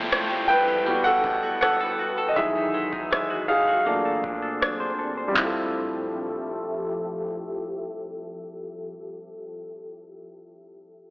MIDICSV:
0, 0, Header, 1, 6, 480
1, 0, Start_track
1, 0, Key_signature, -1, "major"
1, 0, Tempo, 750000
1, 1514, Time_signature, 4, 2, 24, 8
1, 7106, End_track
2, 0, Start_track
2, 0, Title_t, "Ambient pad"
2, 0, Program_c, 0, 92
2, 0, Note_on_c, 0, 41, 79
2, 0, Note_on_c, 0, 64, 67
2, 0, Note_on_c, 0, 69, 72
2, 0, Note_on_c, 0, 79, 87
2, 545, Note_off_c, 0, 41, 0
2, 545, Note_off_c, 0, 64, 0
2, 545, Note_off_c, 0, 79, 0
2, 551, Note_on_c, 0, 71, 78
2, 552, Note_on_c, 0, 43, 70
2, 552, Note_on_c, 0, 66, 66
2, 1495, Note_off_c, 0, 69, 0
2, 1503, Note_off_c, 0, 43, 0
2, 1503, Note_off_c, 0, 66, 0
2, 1503, Note_off_c, 0, 71, 0
2, 1511, Note_on_c, 0, 68, 80
2, 1512, Note_on_c, 0, 40, 77
2, 1514, Note_on_c, 0, 54, 70
2, 1514, Note_on_c, 0, 66, 70
2, 2463, Note_off_c, 0, 68, 0
2, 2464, Note_off_c, 0, 40, 0
2, 2465, Note_off_c, 0, 54, 0
2, 2465, Note_off_c, 0, 66, 0
2, 2475, Note_on_c, 0, 46, 73
2, 2475, Note_on_c, 0, 72, 75
2, 2476, Note_on_c, 0, 60, 66
2, 2476, Note_on_c, 0, 62, 65
2, 3425, Note_off_c, 0, 46, 0
2, 3425, Note_off_c, 0, 60, 0
2, 3425, Note_off_c, 0, 62, 0
2, 3425, Note_off_c, 0, 72, 0
2, 3435, Note_on_c, 0, 53, 75
2, 3435, Note_on_c, 0, 69, 88
2, 3436, Note_on_c, 0, 67, 69
2, 3436, Note_on_c, 0, 76, 69
2, 5841, Note_off_c, 0, 53, 0
2, 5841, Note_off_c, 0, 67, 0
2, 5841, Note_off_c, 0, 69, 0
2, 5841, Note_off_c, 0, 76, 0
2, 7106, End_track
3, 0, Start_track
3, 0, Title_t, "Grand piano"
3, 0, Program_c, 1, 0
3, 0, Control_c, 1, 64, 127
3, 0, Note_on_c, 1, 53, 57
3, 0, Note_on_c, 1, 57, 50
3, 0, Note_on_c, 1, 64, 62
3, 0, Note_on_c, 1, 72, 76
3, 0, Note_on_c, 1, 79, 100
3, 306, Note_off_c, 1, 79, 0
3, 306, Note_on_c, 1, 79, 106
3, 319, Note_on_c, 1, 71, 80
3, 553, Note_on_c, 1, 55, 51
3, 556, Note_on_c, 1, 59, 45
3, 561, Note_on_c, 1, 66, 56
3, 562, Note_off_c, 1, 64, 0
3, 562, Control_c, 1, 64, 0
3, 563, Note_off_c, 1, 72, 0
3, 564, Note_off_c, 1, 53, 0
3, 566, Note_off_c, 1, 57, 0
3, 651, Note_off_c, 1, 71, 0
3, 665, Note_on_c, 1, 78, 109
3, 675, Control_c, 1, 64, 127
3, 679, Note_on_c, 1, 69, 75
3, 681, Note_off_c, 1, 79, 0
3, 1011, Note_off_c, 1, 69, 0
3, 1021, Note_off_c, 1, 78, 0
3, 1031, Note_on_c, 1, 78, 96
3, 1042, Note_on_c, 1, 69, 74
3, 1448, Note_off_c, 1, 69, 0
3, 1463, Note_on_c, 1, 75, 67
3, 1481, Note_off_c, 1, 78, 0
3, 1488, Note_off_c, 1, 55, 0
3, 1490, Note_off_c, 1, 59, 0
3, 1492, Note_off_c, 1, 66, 0
3, 1511, Note_off_c, 1, 75, 0
3, 1512, Note_on_c, 1, 76, 90
3, 1513, Note_on_c, 1, 52, 58
3, 1518, Note_on_c, 1, 54, 51
3, 1520, Note_on_c, 1, 51, 61
3, 1523, Note_on_c, 1, 68, 69
3, 1524, Control_c, 1, 64, 0
3, 1620, Control_c, 1, 64, 127
3, 2213, Note_off_c, 1, 68, 0
3, 2229, Note_on_c, 1, 77, 81
3, 2240, Note_on_c, 1, 68, 62
3, 2255, Note_off_c, 1, 76, 0
3, 2448, Note_off_c, 1, 52, 0
3, 2451, Note_off_c, 1, 54, 0
3, 2452, Note_off_c, 1, 51, 0
3, 2470, Note_on_c, 1, 46, 51
3, 2475, Note_on_c, 1, 57, 46
3, 2478, Note_on_c, 1, 62, 58
3, 2482, Control_c, 1, 64, 0
3, 2581, Control_c, 1, 64, 127
3, 3166, Note_off_c, 1, 77, 0
3, 3172, Note_off_c, 1, 68, 0
3, 3379, Note_on_c, 1, 55, 81
3, 3405, Note_on_c, 1, 60, 71
3, 3406, Note_off_c, 1, 46, 0
3, 3409, Note_off_c, 1, 57, 0
3, 3411, Note_off_c, 1, 62, 0
3, 3434, Note_on_c, 1, 64, 69
3, 3442, Control_c, 1, 64, 0
3, 3461, Note_on_c, 1, 65, 68
3, 3488, Note_on_c, 1, 69, 85
3, 3546, Control_c, 1, 64, 127
3, 6261, Note_off_c, 1, 55, 0
3, 6274, Note_off_c, 1, 60, 0
3, 6288, Note_off_c, 1, 64, 0
3, 6302, Note_off_c, 1, 65, 0
3, 6316, Note_off_c, 1, 69, 0
3, 6964, Control_c, 1, 64, 0
3, 7106, End_track
4, 0, Start_track
4, 0, Title_t, "Clean electric guitar"
4, 0, Program_c, 2, 27
4, 0, Note_on_c, 2, 53, 82
4, 0, Note_on_c, 2, 57, 63
4, 0, Note_on_c, 2, 64, 59
4, 0, Note_on_c, 2, 69, 60
4, 70, Note_off_c, 2, 57, 0
4, 72, Note_on_c, 2, 57, 70
4, 190, Note_off_c, 2, 69, 0
4, 192, Note_on_c, 2, 67, 64
4, 306, Note_off_c, 2, 64, 0
4, 314, Note_on_c, 2, 64, 58
4, 427, Note_off_c, 2, 67, 0
4, 435, Note_on_c, 2, 67, 62
4, 550, Note_off_c, 2, 57, 0
4, 553, Note_on_c, 2, 55, 80
4, 602, Note_off_c, 2, 53, 0
4, 602, Note_off_c, 2, 64, 0
4, 602, Note_off_c, 2, 67, 0
4, 673, Note_on_c, 2, 66, 57
4, 795, Note_on_c, 2, 59, 58
4, 912, Note_off_c, 2, 66, 0
4, 914, Note_on_c, 2, 66, 57
4, 1031, Note_off_c, 2, 59, 0
4, 1034, Note_on_c, 2, 59, 65
4, 1156, Note_on_c, 2, 69, 62
4, 1268, Note_off_c, 2, 66, 0
4, 1276, Note_on_c, 2, 66, 55
4, 1387, Note_off_c, 2, 69, 0
4, 1395, Note_on_c, 2, 69, 64
4, 1514, Note_on_c, 2, 52, 84
4, 1562, Note_off_c, 2, 55, 0
4, 1562, Note_off_c, 2, 59, 0
4, 1563, Note_off_c, 2, 66, 0
4, 1563, Note_off_c, 2, 69, 0
4, 1634, Note_on_c, 2, 63, 57
4, 1755, Note_on_c, 2, 56, 61
4, 1866, Note_off_c, 2, 63, 0
4, 1874, Note_on_c, 2, 63, 61
4, 1985, Note_off_c, 2, 56, 0
4, 1993, Note_on_c, 2, 56, 64
4, 2113, Note_on_c, 2, 66, 56
4, 2225, Note_off_c, 2, 63, 0
4, 2233, Note_on_c, 2, 63, 60
4, 2345, Note_off_c, 2, 66, 0
4, 2353, Note_on_c, 2, 66, 61
4, 2471, Note_off_c, 2, 56, 0
4, 2474, Note_on_c, 2, 58, 81
4, 2521, Note_off_c, 2, 63, 0
4, 2521, Note_off_c, 2, 66, 0
4, 2522, Note_off_c, 2, 52, 0
4, 2594, Note_on_c, 2, 69, 54
4, 2712, Note_on_c, 2, 62, 57
4, 2829, Note_off_c, 2, 69, 0
4, 2832, Note_on_c, 2, 69, 55
4, 2946, Note_off_c, 2, 62, 0
4, 2953, Note_on_c, 2, 62, 61
4, 3072, Note_on_c, 2, 72, 60
4, 3189, Note_off_c, 2, 69, 0
4, 3191, Note_on_c, 2, 69, 54
4, 3309, Note_off_c, 2, 72, 0
4, 3312, Note_on_c, 2, 72, 62
4, 3418, Note_on_c, 2, 53, 73
4, 3433, Note_off_c, 2, 58, 0
4, 3435, Note_on_c, 2, 57, 74
4, 3447, Note_off_c, 2, 62, 0
4, 3449, Note_on_c, 2, 64, 82
4, 3459, Note_off_c, 2, 69, 0
4, 3462, Note_on_c, 2, 67, 83
4, 5552, Note_off_c, 2, 72, 0
4, 6306, Note_off_c, 2, 53, 0
4, 6315, Note_off_c, 2, 57, 0
4, 6322, Note_off_c, 2, 64, 0
4, 6328, Note_off_c, 2, 67, 0
4, 7106, End_track
5, 0, Start_track
5, 0, Title_t, "Downlifter"
5, 0, Program_c, 3, 103
5, 0, Note_on_c, 3, 60, 74
5, 3434, Note_off_c, 3, 60, 0
5, 7106, End_track
6, 0, Start_track
6, 0, Title_t, "Drums"
6, 80, Note_on_c, 9, 37, 110
6, 144, Note_off_c, 9, 37, 0
6, 794, Note_on_c, 9, 36, 96
6, 858, Note_off_c, 9, 36, 0
6, 1041, Note_on_c, 9, 37, 97
6, 1105, Note_off_c, 9, 37, 0
6, 1513, Note_on_c, 9, 36, 101
6, 1577, Note_off_c, 9, 36, 0
6, 1873, Note_on_c, 9, 36, 78
6, 1937, Note_off_c, 9, 36, 0
6, 2000, Note_on_c, 9, 37, 101
6, 2064, Note_off_c, 9, 37, 0
6, 2714, Note_on_c, 9, 36, 89
6, 2778, Note_off_c, 9, 36, 0
6, 2960, Note_on_c, 9, 37, 96
6, 3024, Note_off_c, 9, 37, 0
6, 3433, Note_on_c, 9, 36, 99
6, 3433, Note_on_c, 9, 39, 82
6, 3433, Note_on_c, 9, 43, 96
6, 3497, Note_off_c, 9, 36, 0
6, 3497, Note_off_c, 9, 39, 0
6, 3497, Note_off_c, 9, 43, 0
6, 7106, End_track
0, 0, End_of_file